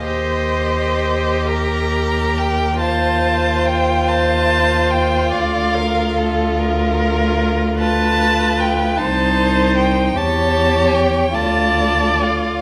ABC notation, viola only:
X:1
M:6/8
L:1/8
Q:3/8=48
K:Bb
V:1 name="Viola"
c3 B3 | c3 c3 | d B A B3 | _c3 =c3 |
^c3 d3 |]